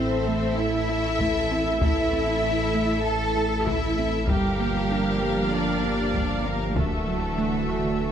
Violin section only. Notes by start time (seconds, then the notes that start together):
Already playing: C5
0.58 E5
1.82 E5
3.05 A5
3.67 E5
4.29 G4
5.53 D5
6.45 A#4
6.77 A4